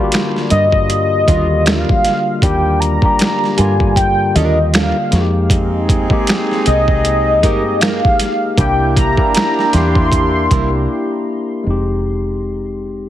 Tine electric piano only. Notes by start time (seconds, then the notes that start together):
Already playing: D3 G3 A#3 D4 F4 F#4
0.04 G4
1.26 D3 G3 A#3 F4
2.42 G3 A#3 D4 G4
3.02 G3 A#3 D4 G4
3.57 D3 G3 A#3 F4
5.11 G#3 A#3 D#4 F#4
5.21 G4
6.09 G#3 A#3 D#4 G4
7.42 A#3 D#4 G4 G#4
8.57 A#3 D4 E4 G4
9.17 A#3 D4 E4 A#4
9.73 A#3 D4 E4 G4
11.64 G#3 C4
11.68 D#4 G4